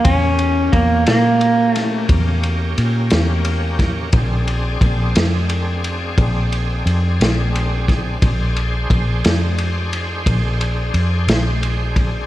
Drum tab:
RD |xxxxxxxxxxxx|xxxxxxxxxxxx|xxxxxxxxxxxx|
SD |---o-o---o-o|---o-----o-o|---o-----o--|
BD |o-o---o----o|o-o---o----o|o-o---o----o|